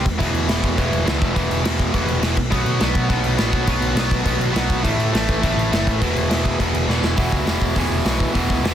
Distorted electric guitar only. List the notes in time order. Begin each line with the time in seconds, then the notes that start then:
0.18 E2 B2 E3
0.48 E2 B2 E3
0.77 E2 B2 E3
1.05 E2 B2 E3
1.34 E2 B2 E3
1.63 E2 B2 E3
1.93 E2 B2 E3
2.22 E2 B2 E3
2.50 B2 F#3 B3
2.80 B2 F#3 B3
3.08 B2 F#3 B3
3.38 B2 F#3 B3
3.67 B2 F#3 B3
3.96 B2 F#3 B3
4.25 B2 F#3 B3
4.53 B2 F#3 B3
4.83 A2 E3 A3
5.13 A2 E3 A3
5.42 A2 E3 A3
5.72 A2 E3 A3
6.01 E2 B2 E3
6.30 E2 B2 E3
6.59 E2 B2 E3
6.89 E2 B2 E3
7.18 E2 B2 E3
7.47 E2 B2 E3
7.76 E2 B2 E3
8.05 E2 B2 E3
8.33 E2 B2 E3
8.64 E2 B2 E3